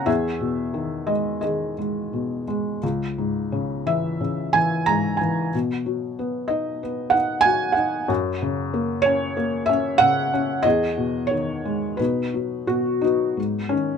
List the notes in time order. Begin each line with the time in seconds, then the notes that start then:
0.06 E2 G#4 E5
0.40 B2
0.74 D#3
1.07 G#3 D#5
1.41 D#3 G#4 D#5
1.78 G#3
2.13 B2
2.48 G#3
2.83 C#2
3.18 G#2
3.52 C#3
3.86 E3 E5
4.21 C#3
4.53 E3 G#5
4.86 G#2 A#5
5.17 G#5
5.21 E3
5.54 B2
5.86 F#3
6.19 B3
6.48 D#4 D#5
6.83 B3
7.10 D#4 F#5
7.41 G#5
7.45 F#3
7.72 F#5
7.77 D#4
8.08 F#2
8.42 C#3
8.74 A#3
9.02 C#5
9.06 C#4
9.37 A#3
9.66 C#4 E5
9.98 C#3 F#5
10.34 C#4
10.63 E2 D#5
10.67 G#4
10.97 B2
11.27 C#5
11.31 D#3
11.65 G#3
11.97 B2 D#4 B4
12.34 F#3
12.67 B2 F#4
13.01 F#3 B3 D#4
13.37 G#2
13.69 D#3 C#4